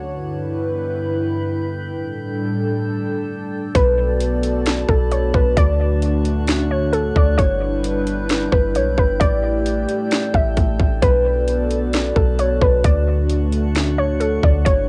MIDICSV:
0, 0, Header, 1, 6, 480
1, 0, Start_track
1, 0, Key_signature, 2, "minor"
1, 0, Tempo, 454545
1, 120, Time_signature, 4, 2, 24, 8
1, 15722, End_track
2, 0, Start_track
2, 0, Title_t, "Synth pluck"
2, 0, Program_c, 0, 84
2, 3959, Note_on_c, 0, 71, 112
2, 5118, Note_off_c, 0, 71, 0
2, 5160, Note_on_c, 0, 69, 77
2, 5388, Note_off_c, 0, 69, 0
2, 5404, Note_on_c, 0, 73, 75
2, 5630, Note_off_c, 0, 73, 0
2, 5642, Note_on_c, 0, 71, 82
2, 5869, Note_off_c, 0, 71, 0
2, 5881, Note_on_c, 0, 74, 113
2, 7038, Note_off_c, 0, 74, 0
2, 7086, Note_on_c, 0, 73, 79
2, 7311, Note_off_c, 0, 73, 0
2, 7315, Note_on_c, 0, 69, 82
2, 7545, Note_off_c, 0, 69, 0
2, 7564, Note_on_c, 0, 74, 80
2, 7789, Note_on_c, 0, 73, 105
2, 7790, Note_off_c, 0, 74, 0
2, 8953, Note_off_c, 0, 73, 0
2, 8997, Note_on_c, 0, 71, 79
2, 9227, Note_off_c, 0, 71, 0
2, 9248, Note_on_c, 0, 73, 78
2, 9473, Note_off_c, 0, 73, 0
2, 9485, Note_on_c, 0, 71, 75
2, 9711, Note_off_c, 0, 71, 0
2, 9713, Note_on_c, 0, 74, 112
2, 10874, Note_off_c, 0, 74, 0
2, 10925, Note_on_c, 0, 76, 78
2, 11151, Note_off_c, 0, 76, 0
2, 11638, Note_on_c, 0, 71, 115
2, 12797, Note_off_c, 0, 71, 0
2, 12842, Note_on_c, 0, 69, 77
2, 13069, Note_off_c, 0, 69, 0
2, 13086, Note_on_c, 0, 73, 75
2, 13312, Note_off_c, 0, 73, 0
2, 13323, Note_on_c, 0, 71, 81
2, 13550, Note_off_c, 0, 71, 0
2, 13565, Note_on_c, 0, 74, 113
2, 14720, Note_off_c, 0, 74, 0
2, 14766, Note_on_c, 0, 73, 82
2, 14992, Note_off_c, 0, 73, 0
2, 14996, Note_on_c, 0, 69, 78
2, 15226, Note_off_c, 0, 69, 0
2, 15245, Note_on_c, 0, 74, 85
2, 15470, Note_on_c, 0, 73, 101
2, 15471, Note_off_c, 0, 74, 0
2, 15722, Note_off_c, 0, 73, 0
2, 15722, End_track
3, 0, Start_track
3, 0, Title_t, "Synth texture"
3, 0, Program_c, 1, 99
3, 118, Note_on_c, 1, 79, 87
3, 119, Note_on_c, 1, 64, 79
3, 119, Note_on_c, 1, 71, 76
3, 2021, Note_off_c, 1, 64, 0
3, 2021, Note_off_c, 1, 71, 0
3, 2040, Note_on_c, 1, 69, 74
3, 2041, Note_on_c, 1, 62, 79
3, 3921, Note_off_c, 1, 79, 0
3, 3941, Note_off_c, 1, 62, 0
3, 3941, Note_off_c, 1, 69, 0
3, 3958, Note_on_c, 1, 62, 85
3, 3959, Note_on_c, 1, 71, 71
3, 3959, Note_on_c, 1, 81, 85
3, 5860, Note_off_c, 1, 81, 0
3, 5861, Note_off_c, 1, 71, 0
3, 5879, Note_on_c, 1, 78, 94
3, 5881, Note_on_c, 1, 85, 78
3, 7761, Note_off_c, 1, 62, 0
3, 7780, Note_off_c, 1, 78, 0
3, 7782, Note_off_c, 1, 85, 0
3, 7800, Note_on_c, 1, 64, 85
3, 7801, Note_on_c, 1, 71, 74
3, 7802, Note_on_c, 1, 79, 88
3, 9701, Note_off_c, 1, 64, 0
3, 9702, Note_off_c, 1, 71, 0
3, 9721, Note_on_c, 1, 69, 71
3, 9723, Note_on_c, 1, 62, 82
3, 11603, Note_off_c, 1, 79, 0
3, 11622, Note_off_c, 1, 69, 0
3, 11641, Note_on_c, 1, 81, 91
3, 11643, Note_on_c, 1, 71, 76
3, 13542, Note_off_c, 1, 71, 0
3, 13542, Note_off_c, 1, 81, 0
3, 13563, Note_on_c, 1, 78, 90
3, 13564, Note_on_c, 1, 85, 73
3, 15439, Note_off_c, 1, 62, 0
3, 15463, Note_off_c, 1, 78, 0
3, 15463, Note_off_c, 1, 85, 0
3, 15479, Note_on_c, 1, 64, 84
3, 15482, Note_on_c, 1, 71, 74
3, 15482, Note_on_c, 1, 79, 86
3, 15722, Note_off_c, 1, 64, 0
3, 15722, Note_off_c, 1, 71, 0
3, 15722, Note_off_c, 1, 79, 0
3, 15722, End_track
4, 0, Start_track
4, 0, Title_t, "Analog synth pad"
4, 0, Program_c, 2, 89
4, 0, Note_on_c, 2, 50, 73
4, 123, Note_on_c, 2, 71, 91
4, 124, Note_on_c, 2, 43, 83
4, 125, Note_on_c, 2, 64, 75
4, 2003, Note_off_c, 2, 50, 0
4, 2022, Note_off_c, 2, 71, 0
4, 2023, Note_off_c, 2, 43, 0
4, 2023, Note_off_c, 2, 64, 0
4, 2042, Note_on_c, 2, 62, 75
4, 2043, Note_on_c, 2, 69, 95
4, 2044, Note_on_c, 2, 45, 82
4, 2044, Note_on_c, 2, 55, 78
4, 3942, Note_off_c, 2, 62, 0
4, 3943, Note_off_c, 2, 45, 0
4, 3943, Note_off_c, 2, 55, 0
4, 3943, Note_off_c, 2, 69, 0
4, 3962, Note_on_c, 2, 59, 85
4, 3963, Note_on_c, 2, 66, 78
4, 3963, Note_on_c, 2, 69, 75
4, 3963, Note_on_c, 2, 74, 89
4, 5862, Note_off_c, 2, 59, 0
4, 5862, Note_off_c, 2, 69, 0
4, 5862, Note_off_c, 2, 74, 0
4, 5878, Note_on_c, 2, 50, 82
4, 5879, Note_on_c, 2, 57, 77
4, 5879, Note_on_c, 2, 62, 76
4, 7763, Note_off_c, 2, 66, 0
4, 7780, Note_off_c, 2, 50, 0
4, 7781, Note_off_c, 2, 57, 0
4, 7781, Note_off_c, 2, 62, 0
4, 7800, Note_on_c, 2, 64, 74
4, 7801, Note_on_c, 2, 55, 84
4, 7801, Note_on_c, 2, 62, 77
4, 7801, Note_on_c, 2, 71, 96
4, 9701, Note_off_c, 2, 55, 0
4, 9702, Note_off_c, 2, 62, 0
4, 9702, Note_off_c, 2, 71, 0
4, 9722, Note_on_c, 2, 74, 91
4, 9723, Note_on_c, 2, 57, 82
4, 9723, Note_on_c, 2, 67, 75
4, 11602, Note_off_c, 2, 64, 0
4, 11622, Note_off_c, 2, 74, 0
4, 11623, Note_off_c, 2, 57, 0
4, 11623, Note_off_c, 2, 67, 0
4, 11642, Note_on_c, 2, 59, 84
4, 11643, Note_on_c, 2, 66, 75
4, 11643, Note_on_c, 2, 69, 76
4, 11643, Note_on_c, 2, 74, 90
4, 13542, Note_off_c, 2, 59, 0
4, 13542, Note_off_c, 2, 69, 0
4, 13543, Note_off_c, 2, 74, 0
4, 13559, Note_on_c, 2, 50, 85
4, 13560, Note_on_c, 2, 57, 77
4, 13561, Note_on_c, 2, 62, 75
4, 15443, Note_off_c, 2, 66, 0
4, 15461, Note_off_c, 2, 50, 0
4, 15461, Note_off_c, 2, 57, 0
4, 15462, Note_off_c, 2, 62, 0
4, 15479, Note_on_c, 2, 55, 84
4, 15480, Note_on_c, 2, 62, 75
4, 15480, Note_on_c, 2, 71, 92
4, 15481, Note_on_c, 2, 64, 74
4, 15722, Note_off_c, 2, 55, 0
4, 15722, Note_off_c, 2, 62, 0
4, 15722, Note_off_c, 2, 64, 0
4, 15722, Note_off_c, 2, 71, 0
4, 15722, End_track
5, 0, Start_track
5, 0, Title_t, "808-style bass"
5, 0, Program_c, 3, 38
5, 3961, Note_on_c, 3, 35, 109
5, 5119, Note_off_c, 3, 35, 0
5, 5159, Note_on_c, 3, 35, 102
5, 5621, Note_off_c, 3, 35, 0
5, 5639, Note_on_c, 3, 35, 96
5, 5870, Note_off_c, 3, 35, 0
5, 5880, Note_on_c, 3, 38, 111
5, 7518, Note_off_c, 3, 38, 0
5, 7559, Note_on_c, 3, 38, 102
5, 7790, Note_off_c, 3, 38, 0
5, 7800, Note_on_c, 3, 31, 115
5, 8958, Note_off_c, 3, 31, 0
5, 9000, Note_on_c, 3, 31, 104
5, 9240, Note_on_c, 3, 35, 102
5, 9256, Note_off_c, 3, 31, 0
5, 9468, Note_off_c, 3, 35, 0
5, 9480, Note_on_c, 3, 31, 102
5, 9711, Note_off_c, 3, 31, 0
5, 9721, Note_on_c, 3, 33, 116
5, 10412, Note_off_c, 3, 33, 0
5, 10919, Note_on_c, 3, 33, 103
5, 11150, Note_off_c, 3, 33, 0
5, 11162, Note_on_c, 3, 33, 102
5, 11392, Note_off_c, 3, 33, 0
5, 11401, Note_on_c, 3, 33, 99
5, 11631, Note_off_c, 3, 33, 0
5, 11641, Note_on_c, 3, 35, 114
5, 12799, Note_off_c, 3, 35, 0
5, 12840, Note_on_c, 3, 35, 101
5, 13301, Note_off_c, 3, 35, 0
5, 13320, Note_on_c, 3, 35, 105
5, 13550, Note_off_c, 3, 35, 0
5, 13562, Note_on_c, 3, 38, 117
5, 15199, Note_off_c, 3, 38, 0
5, 15240, Note_on_c, 3, 38, 103
5, 15471, Note_off_c, 3, 38, 0
5, 15481, Note_on_c, 3, 31, 120
5, 15722, Note_off_c, 3, 31, 0
5, 15722, End_track
6, 0, Start_track
6, 0, Title_t, "Drums"
6, 3961, Note_on_c, 9, 36, 118
6, 3961, Note_on_c, 9, 42, 76
6, 4066, Note_off_c, 9, 42, 0
6, 4067, Note_off_c, 9, 36, 0
6, 4440, Note_on_c, 9, 42, 69
6, 4545, Note_off_c, 9, 42, 0
6, 4681, Note_on_c, 9, 42, 65
6, 4787, Note_off_c, 9, 42, 0
6, 4918, Note_on_c, 9, 42, 66
6, 4932, Note_on_c, 9, 38, 116
6, 5024, Note_off_c, 9, 42, 0
6, 5038, Note_off_c, 9, 38, 0
6, 5159, Note_on_c, 9, 36, 95
6, 5265, Note_off_c, 9, 36, 0
6, 5401, Note_on_c, 9, 42, 59
6, 5507, Note_off_c, 9, 42, 0
6, 5639, Note_on_c, 9, 36, 91
6, 5745, Note_off_c, 9, 36, 0
6, 5880, Note_on_c, 9, 36, 120
6, 5880, Note_on_c, 9, 42, 80
6, 5986, Note_off_c, 9, 36, 0
6, 5986, Note_off_c, 9, 42, 0
6, 6360, Note_on_c, 9, 42, 72
6, 6465, Note_off_c, 9, 42, 0
6, 6601, Note_on_c, 9, 42, 62
6, 6707, Note_off_c, 9, 42, 0
6, 6838, Note_on_c, 9, 42, 67
6, 6852, Note_on_c, 9, 38, 114
6, 6943, Note_off_c, 9, 42, 0
6, 6957, Note_off_c, 9, 38, 0
6, 7321, Note_on_c, 9, 42, 61
6, 7426, Note_off_c, 9, 42, 0
6, 7559, Note_on_c, 9, 36, 91
6, 7664, Note_off_c, 9, 36, 0
6, 7800, Note_on_c, 9, 36, 113
6, 7800, Note_on_c, 9, 42, 78
6, 7906, Note_off_c, 9, 36, 0
6, 7906, Note_off_c, 9, 42, 0
6, 8281, Note_on_c, 9, 42, 77
6, 8387, Note_off_c, 9, 42, 0
6, 8521, Note_on_c, 9, 42, 63
6, 8626, Note_off_c, 9, 42, 0
6, 8757, Note_on_c, 9, 42, 66
6, 8772, Note_on_c, 9, 38, 116
6, 8863, Note_off_c, 9, 42, 0
6, 8877, Note_off_c, 9, 38, 0
6, 9000, Note_on_c, 9, 36, 97
6, 9105, Note_off_c, 9, 36, 0
6, 9241, Note_on_c, 9, 42, 61
6, 9346, Note_off_c, 9, 42, 0
6, 9480, Note_on_c, 9, 36, 90
6, 9585, Note_off_c, 9, 36, 0
6, 9721, Note_on_c, 9, 36, 120
6, 9722, Note_on_c, 9, 42, 82
6, 9827, Note_off_c, 9, 36, 0
6, 9827, Note_off_c, 9, 42, 0
6, 10201, Note_on_c, 9, 42, 74
6, 10306, Note_off_c, 9, 42, 0
6, 10441, Note_on_c, 9, 42, 62
6, 10546, Note_off_c, 9, 42, 0
6, 10679, Note_on_c, 9, 42, 64
6, 10693, Note_on_c, 9, 38, 119
6, 10784, Note_off_c, 9, 42, 0
6, 10798, Note_off_c, 9, 38, 0
6, 10920, Note_on_c, 9, 36, 94
6, 11025, Note_off_c, 9, 36, 0
6, 11160, Note_on_c, 9, 42, 60
6, 11162, Note_on_c, 9, 36, 92
6, 11266, Note_off_c, 9, 42, 0
6, 11268, Note_off_c, 9, 36, 0
6, 11400, Note_on_c, 9, 36, 95
6, 11506, Note_off_c, 9, 36, 0
6, 11641, Note_on_c, 9, 36, 119
6, 11641, Note_on_c, 9, 42, 77
6, 11747, Note_off_c, 9, 36, 0
6, 11747, Note_off_c, 9, 42, 0
6, 12120, Note_on_c, 9, 42, 76
6, 12226, Note_off_c, 9, 42, 0
6, 12361, Note_on_c, 9, 42, 61
6, 12467, Note_off_c, 9, 42, 0
6, 12600, Note_on_c, 9, 42, 66
6, 12614, Note_on_c, 9, 38, 115
6, 12705, Note_off_c, 9, 42, 0
6, 12720, Note_off_c, 9, 38, 0
6, 12841, Note_on_c, 9, 36, 96
6, 12946, Note_off_c, 9, 36, 0
6, 13082, Note_on_c, 9, 42, 62
6, 13187, Note_off_c, 9, 42, 0
6, 13320, Note_on_c, 9, 36, 94
6, 13425, Note_off_c, 9, 36, 0
6, 13561, Note_on_c, 9, 36, 118
6, 13561, Note_on_c, 9, 42, 78
6, 13666, Note_off_c, 9, 42, 0
6, 13667, Note_off_c, 9, 36, 0
6, 14040, Note_on_c, 9, 42, 70
6, 14146, Note_off_c, 9, 42, 0
6, 14282, Note_on_c, 9, 42, 62
6, 14388, Note_off_c, 9, 42, 0
6, 14520, Note_on_c, 9, 42, 65
6, 14534, Note_on_c, 9, 38, 115
6, 14625, Note_off_c, 9, 42, 0
6, 14640, Note_off_c, 9, 38, 0
6, 15001, Note_on_c, 9, 42, 61
6, 15106, Note_off_c, 9, 42, 0
6, 15240, Note_on_c, 9, 36, 92
6, 15345, Note_off_c, 9, 36, 0
6, 15481, Note_on_c, 9, 36, 121
6, 15481, Note_on_c, 9, 42, 76
6, 15586, Note_off_c, 9, 42, 0
6, 15587, Note_off_c, 9, 36, 0
6, 15722, End_track
0, 0, End_of_file